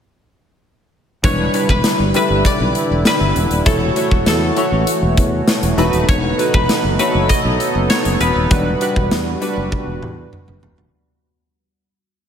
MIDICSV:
0, 0, Header, 1, 6, 480
1, 0, Start_track
1, 0, Tempo, 606061
1, 980, Time_signature, 4, 2, 24, 8
1, 9730, End_track
2, 0, Start_track
2, 0, Title_t, "Koto"
2, 0, Program_c, 0, 107
2, 986, Note_on_c, 0, 73, 95
2, 1347, Note_on_c, 0, 71, 86
2, 1709, Note_off_c, 0, 71, 0
2, 1713, Note_on_c, 0, 71, 85
2, 1949, Note_on_c, 0, 74, 104
2, 1996, Note_off_c, 0, 73, 0
2, 2427, Note_off_c, 0, 71, 0
2, 2430, Note_on_c, 0, 71, 98
2, 2902, Note_on_c, 0, 69, 93
2, 3216, Note_off_c, 0, 74, 0
2, 3381, Note_off_c, 0, 69, 0
2, 3385, Note_on_c, 0, 69, 73
2, 3837, Note_off_c, 0, 71, 0
2, 4822, Note_on_c, 0, 73, 99
2, 4892, Note_off_c, 0, 69, 0
2, 5179, Note_on_c, 0, 71, 85
2, 5535, Note_off_c, 0, 71, 0
2, 5538, Note_on_c, 0, 71, 82
2, 5776, Note_on_c, 0, 75, 104
2, 6134, Note_off_c, 0, 73, 0
2, 6255, Note_on_c, 0, 73, 98
2, 6496, Note_off_c, 0, 71, 0
2, 6499, Note_on_c, 0, 71, 78
2, 7000, Note_off_c, 0, 75, 0
2, 7567, Note_off_c, 0, 73, 0
2, 8148, Note_off_c, 0, 71, 0
2, 9730, End_track
3, 0, Start_track
3, 0, Title_t, "Synth keys"
3, 0, Program_c, 1, 88
3, 977, Note_on_c, 1, 55, 77
3, 982, Note_on_c, 1, 52, 63
3, 982, Note_on_c, 1, 62, 68
3, 984, Note_on_c, 1, 64, 68
3, 987, Note_on_c, 1, 71, 87
3, 1135, Control_c, 1, 64, 127
3, 1199, Note_off_c, 1, 55, 0
3, 1201, Note_off_c, 1, 62, 0
3, 1202, Note_off_c, 1, 64, 0
3, 1204, Note_off_c, 1, 71, 0
3, 1221, Note_on_c, 1, 55, 70
3, 1223, Note_on_c, 1, 62, 62
3, 1227, Note_on_c, 1, 64, 65
3, 1231, Note_on_c, 1, 71, 79
3, 1662, Note_off_c, 1, 55, 0
3, 1662, Note_off_c, 1, 62, 0
3, 1665, Note_off_c, 1, 64, 0
3, 1666, Note_off_c, 1, 71, 0
3, 1669, Note_off_c, 1, 52, 0
3, 1697, Note_on_c, 1, 55, 74
3, 1700, Note_on_c, 1, 62, 66
3, 1703, Note_on_c, 1, 64, 69
3, 1707, Note_on_c, 1, 71, 83
3, 2580, Note_off_c, 1, 55, 0
3, 2582, Note_off_c, 1, 62, 0
3, 2584, Note_off_c, 1, 64, 0
3, 2585, Note_off_c, 1, 71, 0
3, 2895, Note_on_c, 1, 57, 73
3, 2897, Note_on_c, 1, 64, 67
3, 2899, Note_on_c, 1, 52, 65
3, 2900, Note_on_c, 1, 66, 68
3, 2905, Note_on_c, 1, 73, 84
3, 2908, Control_c, 1, 64, 0
3, 3040, Control_c, 1, 64, 127
3, 3118, Note_off_c, 1, 57, 0
3, 3119, Note_off_c, 1, 64, 0
3, 3120, Note_off_c, 1, 66, 0
3, 3123, Note_off_c, 1, 73, 0
3, 3136, Note_on_c, 1, 57, 73
3, 3140, Note_on_c, 1, 64, 63
3, 3142, Note_on_c, 1, 66, 68
3, 3144, Note_on_c, 1, 73, 81
3, 3579, Note_off_c, 1, 57, 0
3, 3581, Note_off_c, 1, 64, 0
3, 3582, Note_off_c, 1, 66, 0
3, 3583, Note_off_c, 1, 73, 0
3, 3588, Note_off_c, 1, 52, 0
3, 3616, Note_on_c, 1, 57, 75
3, 3619, Note_on_c, 1, 64, 66
3, 3623, Note_on_c, 1, 66, 69
3, 3626, Note_on_c, 1, 73, 83
3, 4500, Note_off_c, 1, 57, 0
3, 4501, Note_off_c, 1, 64, 0
3, 4503, Note_off_c, 1, 66, 0
3, 4505, Note_off_c, 1, 73, 0
3, 4574, Note_on_c, 1, 57, 87
3, 4576, Note_on_c, 1, 63, 81
3, 4579, Note_on_c, 1, 52, 73
3, 4581, Note_on_c, 1, 66, 83
3, 4583, Note_on_c, 1, 71, 98
3, 4590, Control_c, 1, 64, 0
3, 4720, Control_c, 1, 64, 127
3, 5018, Note_off_c, 1, 57, 0
3, 5019, Note_off_c, 1, 63, 0
3, 5021, Note_off_c, 1, 66, 0
3, 5022, Note_off_c, 1, 71, 0
3, 5054, Note_on_c, 1, 57, 72
3, 5057, Note_on_c, 1, 63, 67
3, 5061, Note_on_c, 1, 66, 69
3, 5064, Note_on_c, 1, 71, 81
3, 5268, Note_off_c, 1, 52, 0
3, 5498, Note_off_c, 1, 57, 0
3, 5499, Note_off_c, 1, 63, 0
3, 5502, Note_off_c, 1, 66, 0
3, 5503, Note_off_c, 1, 71, 0
3, 5535, Note_on_c, 1, 57, 75
3, 5538, Note_on_c, 1, 63, 71
3, 5541, Note_on_c, 1, 66, 71
3, 5544, Note_on_c, 1, 73, 87
3, 6419, Note_off_c, 1, 57, 0
3, 6421, Note_off_c, 1, 63, 0
3, 6422, Note_off_c, 1, 66, 0
3, 6424, Note_off_c, 1, 73, 0
3, 6734, Note_on_c, 1, 55, 77
3, 6738, Note_on_c, 1, 52, 63
3, 6738, Note_on_c, 1, 62, 70
3, 6740, Note_on_c, 1, 66, 70
3, 6744, Note_on_c, 1, 71, 86
3, 6750, Control_c, 1, 64, 0
3, 6876, Control_c, 1, 64, 127
3, 6957, Note_off_c, 1, 55, 0
3, 6959, Note_off_c, 1, 62, 0
3, 6961, Note_off_c, 1, 66, 0
3, 6963, Note_off_c, 1, 71, 0
3, 6977, Note_on_c, 1, 55, 71
3, 6981, Note_on_c, 1, 62, 69
3, 6984, Note_on_c, 1, 66, 66
3, 6988, Note_on_c, 1, 71, 84
3, 7420, Note_off_c, 1, 55, 0
3, 7422, Note_off_c, 1, 62, 0
3, 7423, Note_off_c, 1, 66, 0
3, 7425, Note_off_c, 1, 71, 0
3, 7427, Note_off_c, 1, 52, 0
3, 7454, Note_on_c, 1, 55, 85
3, 7457, Note_on_c, 1, 62, 80
3, 7459, Note_on_c, 1, 66, 81
3, 7462, Note_on_c, 1, 71, 97
3, 8339, Note_off_c, 1, 55, 0
3, 8341, Note_off_c, 1, 62, 0
3, 8342, Note_off_c, 1, 66, 0
3, 8343, Note_off_c, 1, 71, 0
3, 8671, Control_c, 1, 64, 0
3, 9730, End_track
4, 0, Start_track
4, 0, Title_t, "Analog synth pad"
4, 0, Program_c, 2, 89
4, 984, Note_on_c, 2, 64, 89
4, 986, Note_on_c, 2, 55, 70
4, 987, Note_on_c, 2, 50, 83
4, 2883, Note_off_c, 2, 64, 0
4, 2884, Note_off_c, 2, 50, 0
4, 2884, Note_off_c, 2, 55, 0
4, 2901, Note_on_c, 2, 52, 77
4, 2901, Note_on_c, 2, 57, 68
4, 2903, Note_on_c, 2, 66, 87
4, 4564, Note_off_c, 2, 52, 0
4, 4564, Note_off_c, 2, 57, 0
4, 4564, Note_off_c, 2, 66, 0
4, 4582, Note_on_c, 2, 69, 87
4, 4584, Note_on_c, 2, 63, 81
4, 4585, Note_on_c, 2, 59, 73
4, 6719, Note_off_c, 2, 69, 0
4, 6720, Note_off_c, 2, 63, 0
4, 6738, Note_on_c, 2, 55, 84
4, 6741, Note_on_c, 2, 66, 82
4, 8631, Note_off_c, 2, 59, 0
4, 8640, Note_off_c, 2, 55, 0
4, 8641, Note_off_c, 2, 66, 0
4, 9730, End_track
5, 0, Start_track
5, 0, Title_t, "Fretless electric bass"
5, 0, Program_c, 3, 35
5, 981, Note_on_c, 3, 28, 107
5, 1161, Note_off_c, 3, 28, 0
5, 1340, Note_on_c, 3, 28, 94
5, 1430, Note_off_c, 3, 28, 0
5, 1580, Note_on_c, 3, 31, 79
5, 1670, Note_off_c, 3, 31, 0
5, 1821, Note_on_c, 3, 31, 84
5, 1911, Note_off_c, 3, 31, 0
5, 2061, Note_on_c, 3, 35, 88
5, 2151, Note_off_c, 3, 35, 0
5, 2303, Note_on_c, 3, 28, 81
5, 2392, Note_off_c, 3, 28, 0
5, 2539, Note_on_c, 3, 31, 82
5, 2629, Note_off_c, 3, 31, 0
5, 2661, Note_on_c, 3, 28, 88
5, 2751, Note_off_c, 3, 28, 0
5, 2778, Note_on_c, 3, 27, 75
5, 2869, Note_off_c, 3, 27, 0
5, 2900, Note_on_c, 3, 28, 96
5, 3080, Note_off_c, 3, 28, 0
5, 3258, Note_on_c, 3, 28, 88
5, 3349, Note_off_c, 3, 28, 0
5, 3376, Note_on_c, 3, 40, 100
5, 3558, Note_off_c, 3, 40, 0
5, 3738, Note_on_c, 3, 33, 77
5, 3829, Note_off_c, 3, 33, 0
5, 3980, Note_on_c, 3, 28, 92
5, 4070, Note_off_c, 3, 28, 0
5, 4098, Note_on_c, 3, 40, 89
5, 4279, Note_off_c, 3, 40, 0
5, 4457, Note_on_c, 3, 28, 86
5, 4548, Note_off_c, 3, 28, 0
5, 4574, Note_on_c, 3, 28, 110
5, 4666, Note_off_c, 3, 28, 0
5, 4699, Note_on_c, 3, 27, 90
5, 4789, Note_off_c, 3, 27, 0
5, 4820, Note_on_c, 3, 28, 105
5, 5000, Note_off_c, 3, 28, 0
5, 5181, Note_on_c, 3, 28, 89
5, 5270, Note_off_c, 3, 28, 0
5, 5419, Note_on_c, 3, 30, 81
5, 5510, Note_off_c, 3, 30, 0
5, 5660, Note_on_c, 3, 30, 84
5, 5750, Note_off_c, 3, 30, 0
5, 5900, Note_on_c, 3, 35, 90
5, 5990, Note_off_c, 3, 35, 0
5, 6140, Note_on_c, 3, 30, 90
5, 6230, Note_off_c, 3, 30, 0
5, 6381, Note_on_c, 3, 30, 88
5, 6470, Note_off_c, 3, 30, 0
5, 6497, Note_on_c, 3, 28, 98
5, 6588, Note_off_c, 3, 28, 0
5, 6619, Note_on_c, 3, 27, 89
5, 6709, Note_off_c, 3, 27, 0
5, 6739, Note_on_c, 3, 28, 107
5, 6919, Note_off_c, 3, 28, 0
5, 7100, Note_on_c, 3, 28, 85
5, 7190, Note_off_c, 3, 28, 0
5, 7219, Note_on_c, 3, 40, 88
5, 7399, Note_off_c, 3, 40, 0
5, 7581, Note_on_c, 3, 30, 90
5, 7671, Note_off_c, 3, 30, 0
5, 7816, Note_on_c, 3, 28, 91
5, 7907, Note_off_c, 3, 28, 0
5, 7938, Note_on_c, 3, 40, 97
5, 8119, Note_off_c, 3, 40, 0
5, 8302, Note_on_c, 3, 30, 85
5, 8391, Note_off_c, 3, 30, 0
5, 8421, Note_on_c, 3, 28, 90
5, 8511, Note_off_c, 3, 28, 0
5, 8541, Note_on_c, 3, 27, 85
5, 8630, Note_off_c, 3, 27, 0
5, 9730, End_track
6, 0, Start_track
6, 0, Title_t, "Drums"
6, 980, Note_on_c, 9, 42, 90
6, 981, Note_on_c, 9, 36, 111
6, 1060, Note_off_c, 9, 36, 0
6, 1060, Note_off_c, 9, 42, 0
6, 1218, Note_on_c, 9, 42, 79
6, 1297, Note_off_c, 9, 42, 0
6, 1340, Note_on_c, 9, 36, 87
6, 1419, Note_off_c, 9, 36, 0
6, 1457, Note_on_c, 9, 38, 106
6, 1457, Note_on_c, 9, 42, 88
6, 1536, Note_off_c, 9, 38, 0
6, 1536, Note_off_c, 9, 42, 0
6, 1697, Note_on_c, 9, 42, 67
6, 1776, Note_off_c, 9, 42, 0
6, 1939, Note_on_c, 9, 42, 89
6, 1940, Note_on_c, 9, 36, 88
6, 2018, Note_off_c, 9, 42, 0
6, 2019, Note_off_c, 9, 36, 0
6, 2179, Note_on_c, 9, 42, 74
6, 2258, Note_off_c, 9, 42, 0
6, 2418, Note_on_c, 9, 38, 119
6, 2419, Note_on_c, 9, 42, 79
6, 2497, Note_off_c, 9, 38, 0
6, 2498, Note_off_c, 9, 42, 0
6, 2660, Note_on_c, 9, 42, 57
6, 2740, Note_off_c, 9, 42, 0
6, 2778, Note_on_c, 9, 42, 55
6, 2857, Note_off_c, 9, 42, 0
6, 2898, Note_on_c, 9, 42, 90
6, 2900, Note_on_c, 9, 36, 112
6, 2977, Note_off_c, 9, 42, 0
6, 2979, Note_off_c, 9, 36, 0
6, 3137, Note_on_c, 9, 42, 81
6, 3217, Note_off_c, 9, 42, 0
6, 3259, Note_on_c, 9, 36, 85
6, 3338, Note_off_c, 9, 36, 0
6, 3377, Note_on_c, 9, 38, 107
6, 3377, Note_on_c, 9, 42, 89
6, 3456, Note_off_c, 9, 38, 0
6, 3456, Note_off_c, 9, 42, 0
6, 3616, Note_on_c, 9, 42, 70
6, 3695, Note_off_c, 9, 42, 0
6, 3858, Note_on_c, 9, 42, 94
6, 3937, Note_off_c, 9, 42, 0
6, 4098, Note_on_c, 9, 36, 89
6, 4098, Note_on_c, 9, 42, 78
6, 4177, Note_off_c, 9, 42, 0
6, 4178, Note_off_c, 9, 36, 0
6, 4336, Note_on_c, 9, 38, 108
6, 4338, Note_on_c, 9, 42, 83
6, 4415, Note_off_c, 9, 38, 0
6, 4417, Note_off_c, 9, 42, 0
6, 4458, Note_on_c, 9, 42, 61
6, 4538, Note_off_c, 9, 42, 0
6, 4578, Note_on_c, 9, 42, 52
6, 4657, Note_off_c, 9, 42, 0
6, 4697, Note_on_c, 9, 42, 52
6, 4776, Note_off_c, 9, 42, 0
6, 4820, Note_on_c, 9, 36, 114
6, 4821, Note_on_c, 9, 42, 87
6, 4900, Note_off_c, 9, 36, 0
6, 4900, Note_off_c, 9, 42, 0
6, 5062, Note_on_c, 9, 42, 81
6, 5142, Note_off_c, 9, 42, 0
6, 5180, Note_on_c, 9, 36, 92
6, 5259, Note_off_c, 9, 36, 0
6, 5301, Note_on_c, 9, 38, 109
6, 5301, Note_on_c, 9, 42, 90
6, 5380, Note_off_c, 9, 38, 0
6, 5380, Note_off_c, 9, 42, 0
6, 5540, Note_on_c, 9, 42, 68
6, 5620, Note_off_c, 9, 42, 0
6, 5780, Note_on_c, 9, 36, 84
6, 5783, Note_on_c, 9, 42, 93
6, 5859, Note_off_c, 9, 36, 0
6, 5862, Note_off_c, 9, 42, 0
6, 6020, Note_on_c, 9, 42, 77
6, 6100, Note_off_c, 9, 42, 0
6, 6259, Note_on_c, 9, 38, 115
6, 6260, Note_on_c, 9, 42, 84
6, 6338, Note_off_c, 9, 38, 0
6, 6340, Note_off_c, 9, 42, 0
6, 6378, Note_on_c, 9, 42, 60
6, 6457, Note_off_c, 9, 42, 0
6, 6499, Note_on_c, 9, 42, 57
6, 6578, Note_off_c, 9, 42, 0
6, 6738, Note_on_c, 9, 42, 87
6, 6739, Note_on_c, 9, 36, 111
6, 6817, Note_off_c, 9, 42, 0
6, 6819, Note_off_c, 9, 36, 0
6, 6977, Note_on_c, 9, 42, 83
6, 7056, Note_off_c, 9, 42, 0
6, 7099, Note_on_c, 9, 36, 85
6, 7178, Note_off_c, 9, 36, 0
6, 7218, Note_on_c, 9, 38, 109
6, 7218, Note_on_c, 9, 42, 85
6, 7297, Note_off_c, 9, 42, 0
6, 7298, Note_off_c, 9, 38, 0
6, 7458, Note_on_c, 9, 42, 68
6, 7538, Note_off_c, 9, 42, 0
6, 7699, Note_on_c, 9, 36, 91
6, 7699, Note_on_c, 9, 48, 56
6, 7778, Note_off_c, 9, 48, 0
6, 7779, Note_off_c, 9, 36, 0
6, 7940, Note_on_c, 9, 47, 71
6, 8019, Note_off_c, 9, 47, 0
6, 8180, Note_on_c, 9, 45, 81
6, 8259, Note_off_c, 9, 45, 0
6, 8299, Note_on_c, 9, 45, 77
6, 8379, Note_off_c, 9, 45, 0
6, 8418, Note_on_c, 9, 43, 95
6, 8497, Note_off_c, 9, 43, 0
6, 8538, Note_on_c, 9, 43, 92
6, 8618, Note_off_c, 9, 43, 0
6, 9730, End_track
0, 0, End_of_file